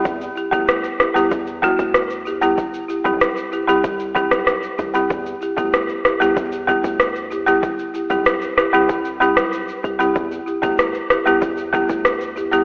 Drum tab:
SH |xxxxxxxxxxxxxxxx|xxxxxxxxxxxxxxxx|xxxxxxxxxxxxxxxx|xxxxxxxxxxxxxxxx|
SD |----r-r-----r---|----r------rr---|----r-r-----r---|----r-r----r----|
BD |o--o----o-o-----|o--o----o-o---o-|o--o----o-o-----|o--o----o-------|

SH |xxxxxxxxxxxxxxxx|
SD |----r-r-----r---|
BD |o--o----o-o-----|